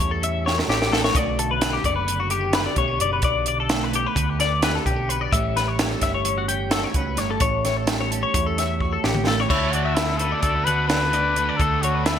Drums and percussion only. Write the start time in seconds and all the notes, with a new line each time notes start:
0.23 closed hi-hat
0.47 snare
0.59 snare
0.70 snare
0.82 snare
0.93 snare
1.04 snare
1.15 kick, closed hi-hat
1.39 closed hi-hat
1.61 snare, closed hi-hat
1.84 kick, closed hi-hat
2.08 closed hi-hat
2.30 closed hi-hat
2.53 snare, closed hi-hat
2.76 kick, closed hi-hat
3.00 closed hi-hat
3.22 kick, closed hi-hat
3.46 closed hi-hat
3.69 snare, closed hi-hat
3.93 closed hi-hat
4.16 kick, closed hi-hat
4.40 snare, closed hi-hat
4.62 snare, closed hi-hat
4.86 kick, closed hi-hat
5.10 closed hi-hat
5.33 kick, closed hi-hat
5.57 snare, closed hi-hat
5.79 snare, closed hi-hat
6.01 kick, snare, closed hi-hat
6.25 closed hi-hat
6.49 closed hi-hat
6.71 snare, closed hi-hat
6.94 kick, closed hi-hat
7.17 snare, closed hi-hat
7.40 kick, closed hi-hat
7.65 snare, closed hi-hat
7.87 snare, closed hi-hat
8.12 closed hi-hat
8.34 kick, closed hi-hat
8.58 snare, closed hi-hat
8.80 kick
9.04 snare
9.15 mid tom
9.27 snare
9.50 kick, crash
9.73 closed hi-hat
9.97 snare, closed hi-hat
10.19 closed hi-hat
10.43 kick, closed hi-hat
10.67 closed hi-hat
10.89 snare, closed hi-hat
11.13 closed hi-hat
11.36 closed hi-hat
11.60 kick, closed hi-hat
11.83 closed hi-hat
12.06 snare, closed hi-hat